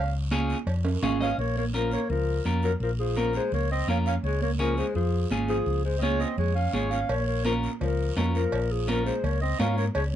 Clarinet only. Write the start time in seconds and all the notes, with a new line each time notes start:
Already playing: F5
1.22 F5
1.39 C#5
1.57 C#5
1.75 A#4
1.93 C#5
2.10 A#4
2.64 A#4
2.82 A#4
2.99 G#4
3.17 A#4
3.36 C5
3.53 C#5
3.72 D#5
3.89 F5
4.07 F5
4.24 C#5
4.42 C#5
4.59 A#4
4.77 C5
4.95 G#4
5.49 G#4
5.85 C5
5.98 C#5 D#5
6.19 D#5
6.37 C#5
6.55 F5
6.73 C#5
6.90 F5
7.09 C#5
7.26 C#5
7.44 A#4
7.81 A#4
8.35 A#4
8.71 G#4
8.89 A#4
9.06 C5
9.24 C#5
9.41 D#5
9.60 F5
9.77 C#5
9.95 C#5
10.12 C#5